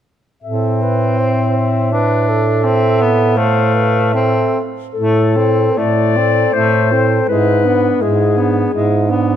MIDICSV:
0, 0, Header, 1, 5, 480
1, 0, Start_track
1, 0, Key_signature, 0, "minor"
1, 0, Tempo, 756620
1, 277, Time_signature, 3, 2, 24, 8
1, 756, Tempo, 723764
1, 2196, Tempo, 764331
1, 2676, Tempo, 823045
1, 3636, Tempo, 752823
1, 4596, Tempo, 729040
1, 5968, End_track
2, 0, Start_track
2, 0, Title_t, "Clarinet"
2, 0, Program_c, 0, 71
2, 270, Note_on_c, 0, 76, 32
2, 728, Note_off_c, 0, 76, 0
2, 754, Note_on_c, 0, 76, 36
2, 1696, Note_off_c, 0, 76, 0
2, 1711, Note_on_c, 0, 76, 42
2, 2197, Note_on_c, 0, 77, 44
2, 2206, Note_off_c, 0, 76, 0
2, 2674, Note_on_c, 0, 76, 38
2, 2683, Note_off_c, 0, 77, 0
2, 2948, Note_off_c, 0, 76, 0
2, 3147, Note_on_c, 0, 69, 53
2, 3634, Note_on_c, 0, 74, 61
2, 3644, Note_off_c, 0, 69, 0
2, 4120, Note_on_c, 0, 72, 47
2, 4130, Note_off_c, 0, 74, 0
2, 4595, Note_off_c, 0, 72, 0
2, 4598, Note_on_c, 0, 71, 57
2, 5083, Note_on_c, 0, 68, 50
2, 5092, Note_off_c, 0, 71, 0
2, 5798, Note_off_c, 0, 68, 0
2, 5968, End_track
3, 0, Start_track
3, 0, Title_t, "Alto saxophone"
3, 0, Program_c, 1, 65
3, 279, Note_on_c, 1, 69, 34
3, 523, Note_on_c, 1, 71, 36
3, 533, Note_off_c, 1, 69, 0
3, 762, Note_on_c, 1, 72, 35
3, 772, Note_off_c, 1, 71, 0
3, 1003, Note_off_c, 1, 72, 0
3, 1008, Note_on_c, 1, 72, 36
3, 1237, Note_off_c, 1, 72, 0
3, 1250, Note_on_c, 1, 71, 44
3, 1484, Note_on_c, 1, 69, 38
3, 1493, Note_off_c, 1, 71, 0
3, 2196, Note_on_c, 1, 72, 45
3, 2205, Note_off_c, 1, 69, 0
3, 2432, Note_on_c, 1, 71, 43
3, 2442, Note_off_c, 1, 72, 0
3, 2681, Note_on_c, 1, 69, 42
3, 2690, Note_off_c, 1, 71, 0
3, 2952, Note_off_c, 1, 69, 0
3, 3153, Note_on_c, 1, 64, 34
3, 3399, Note_on_c, 1, 69, 31
3, 3408, Note_off_c, 1, 64, 0
3, 3640, Note_on_c, 1, 64, 34
3, 3649, Note_off_c, 1, 69, 0
3, 3888, Note_on_c, 1, 69, 30
3, 3898, Note_off_c, 1, 64, 0
3, 4118, Note_off_c, 1, 69, 0
3, 4122, Note_on_c, 1, 64, 32
3, 4363, Note_on_c, 1, 69, 28
3, 4372, Note_off_c, 1, 64, 0
3, 4596, Note_off_c, 1, 69, 0
3, 4603, Note_on_c, 1, 64, 34
3, 4837, Note_on_c, 1, 62, 34
3, 4847, Note_off_c, 1, 64, 0
3, 5075, Note_on_c, 1, 64, 33
3, 5085, Note_off_c, 1, 62, 0
3, 5321, Note_on_c, 1, 62, 33
3, 5331, Note_off_c, 1, 64, 0
3, 5556, Note_off_c, 1, 62, 0
3, 5560, Note_on_c, 1, 64, 36
3, 5791, Note_on_c, 1, 62, 33
3, 5801, Note_off_c, 1, 64, 0
3, 5968, Note_off_c, 1, 62, 0
3, 5968, End_track
4, 0, Start_track
4, 0, Title_t, "Tenor saxophone"
4, 0, Program_c, 2, 66
4, 279, Note_on_c, 2, 60, 36
4, 1212, Note_off_c, 2, 60, 0
4, 1240, Note_on_c, 2, 62, 39
4, 1718, Note_on_c, 2, 60, 42
4, 1728, Note_off_c, 2, 62, 0
4, 1962, Note_on_c, 2, 59, 50
4, 1971, Note_off_c, 2, 60, 0
4, 2203, Note_on_c, 2, 57, 42
4, 2212, Note_off_c, 2, 59, 0
4, 2679, Note_off_c, 2, 57, 0
4, 2682, Note_on_c, 2, 60, 43
4, 2947, Note_off_c, 2, 60, 0
4, 3157, Note_on_c, 2, 57, 35
4, 3396, Note_on_c, 2, 60, 30
4, 3405, Note_off_c, 2, 57, 0
4, 3636, Note_on_c, 2, 57, 30
4, 3646, Note_off_c, 2, 60, 0
4, 3887, Note_on_c, 2, 60, 32
4, 3896, Note_off_c, 2, 57, 0
4, 4121, Note_off_c, 2, 60, 0
4, 4125, Note_on_c, 2, 57, 35
4, 4370, Note_on_c, 2, 60, 28
4, 4379, Note_off_c, 2, 57, 0
4, 4597, Note_off_c, 2, 60, 0
4, 4601, Note_on_c, 2, 56, 35
4, 4841, Note_on_c, 2, 59, 32
4, 4851, Note_off_c, 2, 56, 0
4, 5080, Note_on_c, 2, 56, 34
4, 5090, Note_off_c, 2, 59, 0
4, 5318, Note_on_c, 2, 59, 33
4, 5328, Note_off_c, 2, 56, 0
4, 5553, Note_off_c, 2, 59, 0
4, 5557, Note_on_c, 2, 56, 34
4, 5798, Note_on_c, 2, 59, 32
4, 5807, Note_off_c, 2, 56, 0
4, 5968, Note_off_c, 2, 59, 0
4, 5968, End_track
5, 0, Start_track
5, 0, Title_t, "Bass clarinet"
5, 0, Program_c, 3, 71
5, 276, Note_on_c, 3, 45, 35
5, 2925, Note_off_c, 3, 45, 0
5, 3152, Note_on_c, 3, 45, 43
5, 3580, Note_off_c, 3, 45, 0
5, 3635, Note_on_c, 3, 45, 39
5, 4064, Note_off_c, 3, 45, 0
5, 4119, Note_on_c, 3, 45, 42
5, 4539, Note_off_c, 3, 45, 0
5, 4591, Note_on_c, 3, 44, 44
5, 5016, Note_off_c, 3, 44, 0
5, 5073, Note_on_c, 3, 44, 40
5, 5498, Note_off_c, 3, 44, 0
5, 5555, Note_on_c, 3, 44, 47
5, 5968, Note_off_c, 3, 44, 0
5, 5968, End_track
0, 0, End_of_file